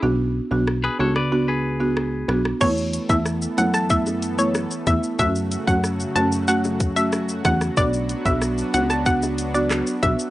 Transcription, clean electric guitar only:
X:1
M:4/4
L:1/16
Q:1/4=93
K:Emix
V:1 name="Clean electric guitar"
z4 z [GB] [Ac] [Bd]2 [GB]6 z | z16 | z16 | z16 |]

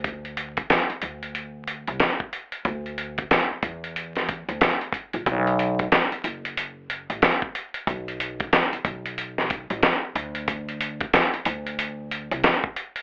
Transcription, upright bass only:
X:1
M:4/4
L:1/16
Q:"Swing 16ths" 1/4=92
K:Bm
V:1 name="Upright bass" clef=bass
D,,4 z2 D,,4- D,, =C,, z4 | D,,4 z2 E,,4- E,, D,, z3 ^A,,, | B,,,4 z2 F,,,4- F,,, A,,, z4 | B,,,4 z2 B,,,4- B,,, A,,, z2 D,,2- |
D,,4 z2 D,,4- D,, =C,, z4 |]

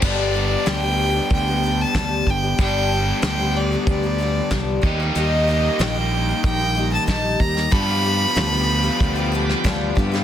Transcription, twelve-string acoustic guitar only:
X:1
M:4/4
L:1/16
Q:1/4=94
K:Gdor
V:1 name="Twelve-string acoustic guitar"
[G,,D,G,=B,DG]2 [G,B,DG]2 [G,,D,G,B,DG] [G,B,DG]2 [G,B,DG]2 [G,B,DG] [G,B,DG]2 [G,,D,G,B,DG]2 [G,B,DG] [G,B,DG] | [G,,D,G,=B,DG]2 [G,B,DG]2 [G,,D,G,B,DG] [G,B,DG]2 [G,B,DG]2 [G,B,DG] [G,B,DG]2 [G,,D,G,B,DG]2 [G,_B,_EG] [B,EG] | [_E,G,B,_EG]2 [G,B,EG]2 [E,G,B,EG] [B,EG]2 [B,EG]2 [B,EG] [G,B,EG]2 [E,G,B,EG]2 [G,B,EG] [B,EG] | [G,,D,F,=B,FG]2 [F,B,FG]2 [G,,D,F,B,FG] [F,B,FG]2 [F,B,FG]2 [F,B,FG] [F,B,FG]2 [G,,D,F,B,FG]2 [F,B,FG] [F,B,FG] |]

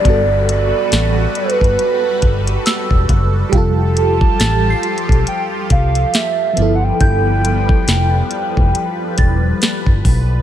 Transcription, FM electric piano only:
X:1
M:4/4
L:1/8
Q:"Swing 16ths" 1/4=69
K:G
V:1 name="FM electric piano"
[G,B,FA]8 | [G,=FGA]6- [G,FGA] [=F,B,EA]- | [=F,B,EA]6- [F,B,EA] z |]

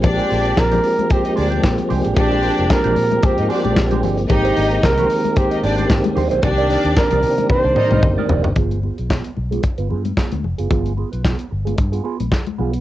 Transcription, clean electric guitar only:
X:1
M:4/4
L:1/16
Q:"Swing 16ths" 1/4=112
K:Gphr
V:1 name="Clean electric guitar"
z [A,DG] [A,DA] z2 [A,DG] z4 [A,DA] [A,DG] z2 [A,DG] [A,DG] | z [A,DG] [A,DG] z2 [A,DG] z4 [A,DG] [A,DG] z [A,DG] [A,DG] z | z [DGc] [DGd] z2 [DGc]2 z3 [DGd] [DGc] z2 [DGc] [DGc] | z [EBd] [EBd] z2 [EBd] z4 [EBd] [EBd] z [EBd] [EBd] z |
[=B,FA] z [B,FA] [B,FA] [B,FA] z2 [B,FA] z [B,F=B] [B,FA] z [B,FA] z2 [B,FA] | [=B,FA] z [B,FA] [B,F=B] [B,FA] z2 [B,FA] z [B,FA] [B,FA] z3 [B,FA] z |]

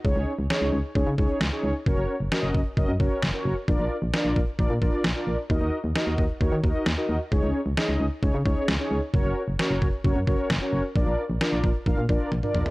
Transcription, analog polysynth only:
X:1
M:4/4
L:1/16
Q:1/4=132
K:Dbmix
V:1 name="Analog polysynth"
[DEAd]3 z [DEAd]3 z [DEAd] z [DEAd]2 z [DEAd]2 z | [DGBd]3 z [DGBe]3 z [DGBe] z [DGBd]2 z [DGBd]2 z | [=DFB=d]3 z [DFBd]3 z [DFBd] z [DFBd]2 z [DFBd]2 z | [EGBe]3 z [EGBe]3 z [EGBd] z [EGBe]2 z [EGBe]2 z |
[DEAd]3 z [DEAe]3 z [DEAd] z [DEAd]2 z [DEAd]2 z | [DGBd]3 z [DGBd]3 z [DGBd] z [DGBd]2 z [DGBd]2 z | [=DFB=d]3 z [DFBd]3 z [DFBf] z [DFBd]2 z [DFBd]2 z |]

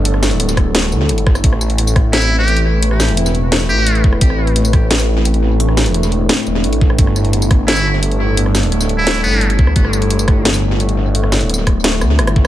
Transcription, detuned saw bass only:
X:1
M:4/4
L:1/16
Q:1/4=173
K:Gmix
V:1 name="Detuned saw bass" clef=bass
G,,,3 D,,,6- D,,, D,,2 G,,,4 | A,,,16- | A,,,3 E,,,6- E,,, A,,,4 E,,,2 | A,,,16- |
A,,,3 E,,,4- E,,, z2 E,,,2 A,,,4 | G,,,16- | G,,,3 D,,,6- D,,, G,,,4 D,,2 | G,,,16- |
G,,,3 D,,,6- D,,, D,,2 G,,,4 |]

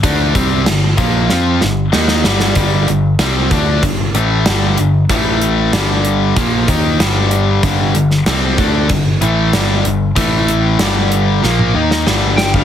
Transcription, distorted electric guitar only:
X:1
M:4/4
L:1/8
Q:1/4=95
K:Gm
V:1 name="Distorted electric guitar" clef=bass
[D,A,D] [C,G,C] [G,,D,] [B,,F,B,] [F,CF] [G,,D,] [E,B,E] [G,,D,G,] | [G,,D,G,] [G,,D,] [C,G,C] [D,A,D] [G,,D,] [A,,=E,A,] [G,,D,G,] [G,,D,] | [A,,=E,A,]2 [G,,D,G,]2 [B,,F,B,] [_E,B,E] [G,,D,G,]2 | [G,,D,G,] [G,,D,] [C,G,C] [D,A,D] [G,,D,] [A,,=E,A,] [G,,D,G,] [G,,D,] |
[A,,=E,A,]2 [G,,D,G,]2 [B,,F,B,] [_E,B,E] [G,,D,G,]2 |]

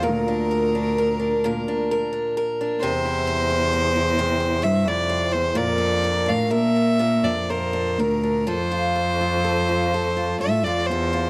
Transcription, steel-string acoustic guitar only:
X:1
M:3/4
L:1/16
Q:1/4=64
K:Bblyd
V:1 name="Steel-string acoustic guitar"
[B,,B] D B D B D [B,,B] D B D B D | [C,c] E c E c E [C,c] E c E c E | [B,,B] D B D B D [B,,B] D B D B D | [F,A] F A F A F A F A F A F |]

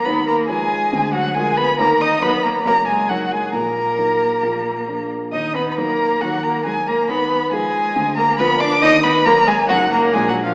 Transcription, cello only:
X:1
M:4/4
L:1/8
Q:1/4=137
K:Ebm
V:1 name="Cello"
C B, A,3 G, A, C | B, E C B, B, A, G, A, | B,6- B, z | E C B,2 G, B, A, B, |
C2 A,3 B, C =D | E C B, A, G, B, (3A, G, F, |]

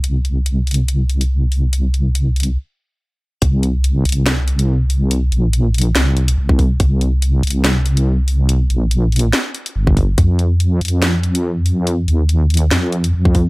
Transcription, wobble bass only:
X:1
M:4/4
L:1/8
Q:"Swing 16ths" 1/4=142
K:Cm
V:1 name="Wobble bass" clef=bass
C,,8- | C,,4 z4 | C,,3 C,,4- C,,- | C,, B,,,3 C,,2 C,,2 |
C,,3 C,,4- C,,- | C,, B,,,3 z2 G,,,2 | F,,3 F,,4- F,,- | F,, E,,3 F,,2 F,,2 |]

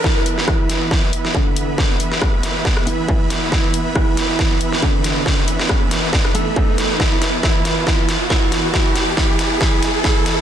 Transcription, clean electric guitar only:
X:1
M:4/4
L:1/8
Q:"Swing 16ths" 1/4=138
K:C
V:1 name="Clean electric guitar"
[E,E] z [E,E]4 [D,D]2- | [D,D] z4 [E,E]3 | [E,E] z [E,E]4 [D,D]2- | [D,D] z4 [A,A]3 |
[E,E] z [E,E]2 [E,E] z [E,E]2 | [E,E] z [E,E]2 [E,E] z [E,E]2 |]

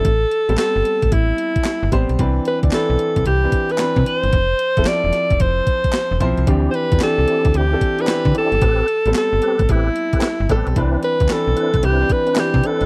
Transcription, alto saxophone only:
X:1
M:4/4
L:1/16
Q:"Swing 16ths" 1/4=112
K:Am
V:1 name="Alto saxophone"
A4 A4 E6 z2 | z2 B2 A4 G3 B3 c2- | c4 d4 c6 z2 | z3/2 c/2 B2 A4 G3 B3 A2- |
A4 A4 E6 z2 | z2 B2 A4 G2 B2 G2 A2 |]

